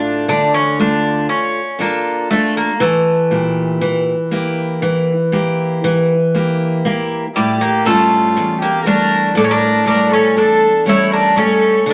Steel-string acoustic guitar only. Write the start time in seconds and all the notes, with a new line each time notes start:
Already playing: A2 A3 D4 F4
0.28 D3
0.79 A3 F4
1.79 D4 F4 A4
2.31 A3 D4 F4
2.80 E3
3.31 A#2 E4 G4
3.81 E3
4.31 A#3 E4 G4
4.82 E3
5.32 A#3 E4 G4
5.84 E3
6.35 A#3 E4 G4
6.85 A#3 E4 G4
7.37 A2
7.85 G3 A3 C#4
8.37 E2
8.85 G3 A3 C#5
9.35 A2
9.86 G3 A3 C#5
10.37 E2
10.86 G3 A3 C#4
11.36 G3 A3 C#4
11.86 D3